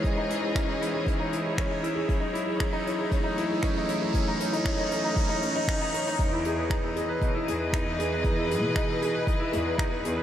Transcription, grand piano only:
X:1
M:4/4
L:1/16
Q:1/4=117
K:E
V:1 name="Grand piano"
C D E G C D E G C D E G C D E G | C D E G C D E G C D E G C D E G | C D C D C D C D C D C D C D C D | D E G B D E G B D E G B D E G B |
D E G B D E G B D E G B D E G B |]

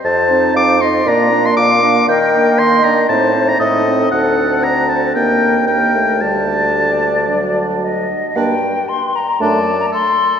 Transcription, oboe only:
X:1
M:4/4
L:1/16
Q:1/4=116
K:Dphr
V:1 name="Oboe"
a4 d'2 c'2 b3 c' d'4 | g4 c'2 b2 a3 b e4 | ^f4 b2 a2 g4 g4 | a12 z4 |
z8 d4 A4 |]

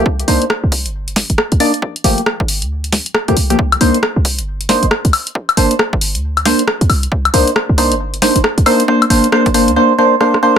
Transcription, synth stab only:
X:1
M:4/4
L:1/16
Q:"Swing 16ths" 1/4=136
K:Cm
V:1 name="Synth stab"
z2 [B,DEc] z8 z3 [B,DEd] z | z2 [F,=A,B,G] z8 z2 [F,A,B,G] z [F,A,B,G] | z2 [B,DEc] z6 z [B,DEc] z4 z | z2 [B,Dc] z6 z [B,Dc] z4 z |
z2 [B,DEc] z3 [B,DEc] z3 [B,DEc] z3 [B,DEc] z | [B,Dc] z [B,Dc] z [B,Dc] z [B,Dc] z [B,Dc] z [B,Dc] z [B,Dc] z [B,Dc] z |]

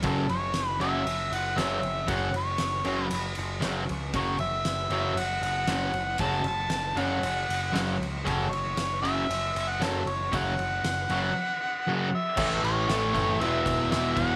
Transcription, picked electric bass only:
X:1
M:4/4
L:1/8
Q:1/4=117
K:F#m
V:1 name="Picked electric bass" clef=bass
F,,, F,,, F,,, F,,, F,,, F,,, F,,, F,,, | F,,, F,,, F,,, F,,, F,,, F,,, F,,, C,, | F,,, F,,, F,,, F,,, F,,, F,,, F,,, F,,, | F,,, F,,, F,,, F,,, F,,, F,,, F,,, C,, |
F,,, F,,, F,,, F,,, F,,, F,,, F,,, F,,, | F,,, F,,, F,,, F,,, z4 | A,,, A,,, A,,, F,,, E,,, E,,, E,,, E,,, |]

